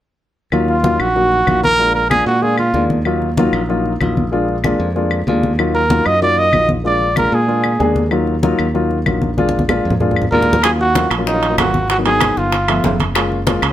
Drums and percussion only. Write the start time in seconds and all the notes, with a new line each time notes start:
0.52 high conga, claves
0.68 high conga
0.84 high conga
1.00 high conga, claves
1.16 high conga
1.32 high conga
1.47 high conga, claves
1.64 high conga
1.80 high conga
1.95 high conga
2.11 high conga, claves
2.43 high conga
2.58 high conga, claves
2.74 high conga
2.90 high conga
3.05 high conga, claves
3.22 high conga
3.37 high conga
3.53 high conga, claves
3.70 high conga
3.86 high conga
4.01 high conga, claves
4.17 high conga
4.33 high conga
4.49 high conga
4.64 high conga, claves
4.96 high conga
5.11 high conga, claves
5.28 high conga
5.43 high conga
5.59 high conga, claves
5.75 high conga
5.90 high conga
6.06 high conga, claves
6.22 high conga
6.38 high conga
6.53 high conga, claves
6.69 high conga
6.85 high conga
7.01 high conga
7.16 high conga, claves
7.49 high conga
7.64 high conga, claves
7.80 high conga
7.96 high conga
8.11 high conga, claves
8.27 high conga
8.43 high conga
8.59 high conga, claves
8.75 high conga
8.91 high conga
9.06 high conga, claves
9.22 high conga
9.38 high conga
9.49 high conga
9.59 high conga
9.69 low conga, claves
9.90 low conga
10.00 low conga
10.11 low conga
10.16 claves
10.22 low conga
10.32 low conga
10.42 low conga
10.53 low conga
10.63 high bongo, high conga, high timbale, claves
10.79 high conga
10.95 high bongo, high conga, high timbale, low timbale
11.11 high bongo, high conga, high timbale, claves
11.27 high bongo, high conga
11.43 high bongo, high conga, high timbale
11.58 high bongo, low bongo, high conga, high timbale, low timbale, claves
11.74 high bongo, high conga
11.90 high bongo, high conga, high timbale
12.06 high conga, high timbale
12.20 high bongo, high conga, high timbale, low timbale, claves
12.37 high bongo
12.52 high bongo, high conga, high timbale
12.68 high bongo, high conga, high timbale, claves
12.84 high bongo, low bongo, high conga, low timbale
13.00 high bongo, high conga, high timbale
13.15 high bongo, high conga, high timbale, claves
13.32 high conga
13.47 high bongo, high conga, high timbale, low timbale
13.62 high bongo, high conga, high timbale, claves